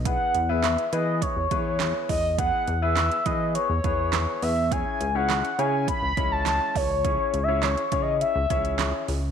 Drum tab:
HH |x-x-xxx-x-x-x-o-|x-x-xxx-x-x-x-o-|x-x-xxx-x-x-x-o-|x-x-xxx-x-xxx-o-|
CP |----x-------x---|----x-------x---|----x-------x---|----x-------x---|
SD |----o-------o---|----o-------o---|----o-------o---|----o-------o---|
BD |o-------o-o---o-|o-----o---o-----|o-------o-o---o-|o-----o---o-----|